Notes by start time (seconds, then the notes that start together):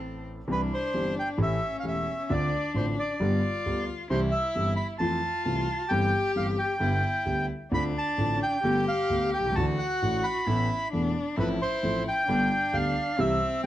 Already playing: A1 A2 E3 A3 C4 A4
0.48 C2 C3 E3 G3 C4 D4 G4
0.52 B4
0.74 C5
0.94 G1 G2 E3 G3 C4 G4
1.19 G5
1.38 A1 A2 E3 A3 C#4 G4
1.43 E5
1.80 E3 F5
1.84 E1 E2 A3 C#4 G4 E5
2.29 D2 D3 A3 C4 D4 F4 D5
2.74 A1 A2 D3 A3 C4 F4 C5
2.99 D5
3.20 G1 G2 D3 G3 B3 F4 G4
3.66 D2 D3 G3 B3 G4
4.10 C2 C3 E3 G3 C4 E4 G4 C5
4.31 E5
4.55 G1 G2 E3 G3 C4 G4
4.76 B5
4.99 F2 E3 F3 A3 C4 F4 A5
5.45 C2 C3 E3 A3 C4 F4 A5
5.89 G1 G2 E3 G3 C4 G4 G5
6.36 G1 G2 E3 G3 C4 G4 F5
6.59 G5
6.80 G1 G2 D3 G3 B3 E4 G4
7.25 D2 D3 G3 B3 G4
7.71 D2 D3 A3 C4 D4 F4 B5
7.98 A5
8.18 A1 A2 D3 A3 C4 F4
8.43 G5
8.63 G1 G2 D3 A3 B3 G4
8.88 F5
9.10 D2 D3 A3 B3 G4
9.34 G5
9.39 B1
9.46 C2
9.52 C#2 F#4 A5
9.57 D2 D3 E3 A3 D4 F#4
9.79 F#5
10.02 A1 A2 E3 A3 D4 F#4
10.24 B5
10.47 A1 A2 E3 A3 B3 E4 A4
10.92 E1 E2 E3 A3 B3 D4 A4
11.37 A1 A2 F3 A3 C4 E4 A4 B4
11.62 C5
11.83 A1 A2 F3 A3 C4 A4
12.08 G5
12.27 G1 G2 D3 G3 B3 D4 G4
12.73 D2 D3 G3 B3 G4 F5
13.18 C2 C3 E3 G3 C4 G4 E5